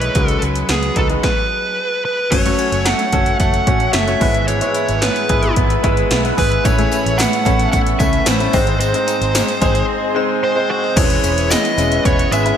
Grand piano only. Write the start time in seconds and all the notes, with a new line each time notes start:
Already playing: E3 G#3 D#4 E4 C#5
0.15 C#3 G#3 D#4 F#4 B4
0.96 G#3 D#4 F#4 B4
1.09 G#3 D#4 F#4 B4
2.31 A3 C#4 F#4 C#5
2.45 A3 C#4 F#4 C#5
3.13 A3 C#4 F#4 C#5
3.66 A3 C#4 F#4 C#5
4.07 A3 C#4 F#4 C#5
4.20 G#2 G#3 B3 E4 B4
4.61 G#3 B3 E4 C#5
5.29 G#3 B3 E4 B4
5.83 G#3 B3 E4 B4
6.23 G#3 B3 E4 B4
6.64 A2 A3 C#4 E4 B4
6.78 A3 C#4 E4 G#4
7.45 A3 C#4 E4 C#5
7.99 A3 C#4 E4 B4
8.40 A3 C#4 E4 B4
8.53 G#2 G#3 C4 D#4 C5
8.93 G#3 C4 D#4 C5
9.61 G#3 C4 D#4 C5
10.14 G#3 C4 D#4 C5
10.55 G#3 C4 D#4 C5
10.96 E3 G#3 C#4 E4 A4
11.04 B4
11.77 G#3 C#4 E4 B4
12.31 G#3 C#4 E4 B4
12.45 G#3 C#4 E4 B4